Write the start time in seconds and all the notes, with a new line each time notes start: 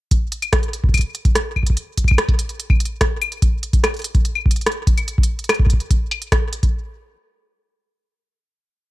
0.11 kick, closed hi-hat
0.32 closed hi-hat
0.42 closed hi-hat, claves
0.53 kick, cross-stick, closed hi-hat
0.63 closed hi-hat
0.73 closed hi-hat
0.84 kick
0.89 kick
0.94 kick, closed hi-hat, claves
0.97 kick, closed hi-hat
1.01 closed hi-hat
1.15 closed hi-hat
1.25 kick, closed hi-hat
1.35 cross-stick, closed hi-hat
1.56 kick, claves
1.63 kick, closed hi-hat
1.70 kick
1.77 closed hi-hat
1.97 kick, closed hi-hat
2.04 kick, closed hi-hat, claves
2.11 kick
2.18 cross-stick, closed hi-hat
2.29 kick, closed hi-hat
2.39 closed hi-hat
2.49 closed hi-hat
2.60 closed hi-hat
2.70 kick, claves
2.80 closed hi-hat
2.85 closed hi-hat
3.01 kick, cross-stick, closed hi-hat
3.22 closed hi-hat, claves
3.32 closed hi-hat
3.42 kick, closed hi-hat
3.63 closed hi-hat
3.73 kick, closed hi-hat
3.84 cross-stick, closed hi-hat, claves
3.94 closed hi-hat
3.97 closed hi-hat
3.99 closed hi-hat
4.02 closed hi-hat
4.04 closed hi-hat
4.15 kick, closed hi-hat
4.25 closed hi-hat
4.35 claves
4.46 kick
4.51 closed hi-hat
4.56 closed hi-hat
4.61 closed hi-hat
4.66 cross-stick, closed hi-hat
4.72 closed hi-hat
4.87 kick, closed hi-hat
4.97 closed hi-hat, claves
5.08 closed hi-hat
5.18 kick
5.23 closed hi-hat
5.39 closed hi-hat
5.44 closed hi-hat
5.49 cross-stick, closed hi-hat, claves
5.54 closed hi-hat
5.60 kick
5.66 kick, closed hi-hat
5.73 kick
5.80 closed hi-hat
5.91 kick, closed hi-hat
6.11 closed hi-hat, claves
6.22 closed hi-hat
6.32 kick, cross-stick, closed hi-hat
6.53 closed hi-hat
6.63 kick, closed hi-hat